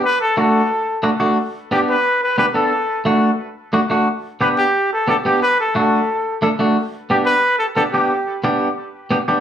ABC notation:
X:1
M:4/4
L:1/8
Q:1/4=178
K:G
V:1 name="Trumpet"
B A A4 z2 | z2 G B2 B B A- | A2 z6 | z2 B G2 A A G |
B A A4 z2 | z2 G B2 A A G- | G2 z6 |]
V:2 name="Clean electric guitar"
z2 [A,DF] z3 [A,DF] [A,DF] | z2 [B,DG] z3 [B,DG] [B,DA] | z2 [A,DF] z3 [A,DF] [A,DF] | z2 [B,DG] z3 [B,DG] [B,DG] |
z2 [A,DF] z3 [A,DA] [A,DF] | z2 [B,DG] z3 [B,DG] [B,DG] | z2 [B,DG] z3 [B,DG] [B,DG] |]